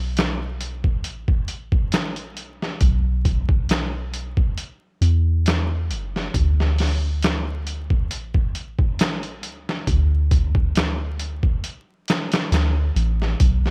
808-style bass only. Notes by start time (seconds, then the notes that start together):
Already playing: B1
1.04 A1
2.37 B1
2.81 B1
5.01 E2
5.90 F#1
6.34 D2
8.10 A1
9.43 D2
9.87 D2
12.52 D2
12.96 A1
13.40 B1